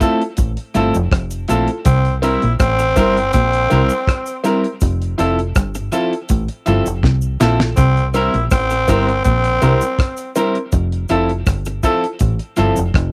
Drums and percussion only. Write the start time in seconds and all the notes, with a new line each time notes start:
0.01 kick, closed hi-hat, cabasa
0.22 closed hi-hat
0.37 kick, closed hi-hat, cabasa
0.57 closed hi-hat
0.75 closed hi-hat, cabasa
0.94 closed hi-hat, cabasa
1.12 kick, cross-stick, closed hi-hat
1.31 closed hi-hat, cabasa
1.48 closed hi-hat, cabasa
1.68 closed hi-hat
1.85 kick, closed hi-hat, cabasa
2.05 closed hi-hat
2.23 closed hi-hat, cabasa
2.42 closed hi-hat
2.60 kick, cross-stick, closed hi-hat, cabasa
2.79 closed hi-hat, cabasa
2.96 kick, cross-stick, closed hi-hat, cabasa
3.17 closed hi-hat
3.33 kick, closed hi-hat, cabasa
3.53 closed hi-hat
3.71 closed hi-hat, cabasa
3.90 closed hi-hat, cabasa
4.07 kick, cross-stick, closed hi-hat
4.26 closed hi-hat, cabasa
4.44 closed hi-hat, cabasa
4.64 closed hi-hat
4.81 kick, closed hi-hat, cabasa
5.02 closed hi-hat
5.19 closed hi-hat, cabasa
5.39 closed hi-hat
5.55 kick, cross-stick, closed hi-hat, cabasa
5.75 closed hi-hat, cabasa
5.92 closed hi-hat, cabasa
6.13 closed hi-hat
6.29 kick, closed hi-hat, cabasa
6.48 closed hi-hat
6.66 closed hi-hat, cabasa
6.86 closed hi-hat, cabasa
7.03 kick, snare
7.21 cabasa
7.41 snare, cabasa
7.60 snare
7.77 kick, closed hi-hat, cabasa
7.97 closed hi-hat
8.14 closed hi-hat, cabasa
8.34 closed hi-hat
8.51 kick, cross-stick, closed hi-hat, cabasa
8.70 closed hi-hat, cabasa
8.88 kick, cross-stick, closed hi-hat, cabasa
9.09 closed hi-hat
9.24 kick, closed hi-hat, cabasa
9.44 closed hi-hat
9.62 closed hi-hat, cabasa
9.81 closed hi-hat, cabasa
9.99 kick, cross-stick, closed hi-hat
10.17 closed hi-hat, cabasa
10.35 closed hi-hat, cabasa
10.55 closed hi-hat
10.72 kick, closed hi-hat, cabasa
10.92 closed hi-hat
11.09 closed hi-hat, cabasa
11.29 closed hi-hat
11.46 kick, cross-stick, closed hi-hat, cabasa
11.65 closed hi-hat, cabasa
11.83 kick, closed hi-hat, cabasa
12.04 closed hi-hat
12.19 kick, closed hi-hat, cabasa
12.39 closed hi-hat
12.56 cross-stick, closed hi-hat, cabasa
12.76 closed hi-hat, cabasa
12.94 kick, cross-stick, closed hi-hat